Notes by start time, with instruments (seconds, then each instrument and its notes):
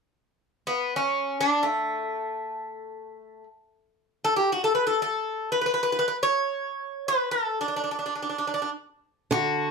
0.67 bouzouki B3
0.96 bouzouki C#4
1.41 bouzouki D4
1.63 bouzouki A3
4.24 bouzouki A4
4.36 bouzouki G4
4.52 bouzouki F#4
4.64 bouzouki A4
4.75 bouzouki B4
4.87 bouzouki A4
5.02 bouzouki A4
5.52 bouzouki B4
5.61 bouzouki B4
5.66 bouzouki B4
5.74 bouzouki B4
5.83 bouzouki B4
5.92 bouzouki B4
5.99 bouzouki B4
6.08 bouzouki B4
6.23 bouzouki C#5
7.08 bouzouki B4
7.31 bouzouki A4
7.61 bouzouki D4
7.68 bouzouki D4
7.76 bouzouki D4
7.84 bouzouki D4
7.91 bouzouki D4
7.99 bouzouki D4
8.06 bouzouki D4
8.15 bouzouki D4
8.23 bouzouki D4
8.30 bouzouki D4
8.38 bouzouki D4
8.47 bouzouki D4
8.54 bouzouki D4
8.62 bouzouki D4
9.31 steel-string acoustic guitar D3, bouzouki F#4